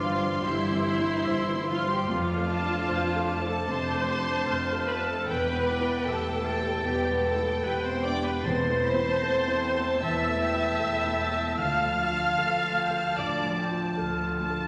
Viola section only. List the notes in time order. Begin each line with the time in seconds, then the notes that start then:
Already playing: F4
0.45 E4
1.70 F4
1.90 G4
2.09 F4
3.48 A4
3.68 C5
4.88 B4
5.09 A4
5.27 B4
6.06 A4
6.85 G4
7.24 A4
7.64 B4
7.84 C5
8.05 D5
8.24 B4
8.43 C5
10.02 E5
11.60 F5
13.18 D5